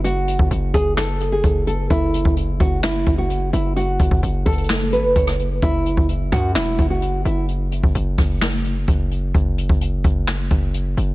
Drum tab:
HH |x---x---x---x---x---x---x---x---|x---x---x---x---x---x---x---x---|x---x---x---xxxxx---x---x---x---|x---x---x---x---x---x---x---x---|
CP |----------------x---------------|----------------x---------------|----------------x---------------|----------------x---------------|
SD |----------------o---------------|----------------o---------------|----------------o---------r-----|------------r---o---------------|
BD |------o-----o-----------o-------|o-----o-----o-------o-----------|----o-o-----o-----------o-------|o-----o-----o-------o-----------|

HH |x---x---x---o---x---x---x---x---|x---x---x---x---x---x---x---x---|
CP |----------------x---------------|----------------x---------------|
SD |------------r---o---------------|----------------o---------------|
BD |------o-----o-----------o-------|o-----o-----o-------o-----------|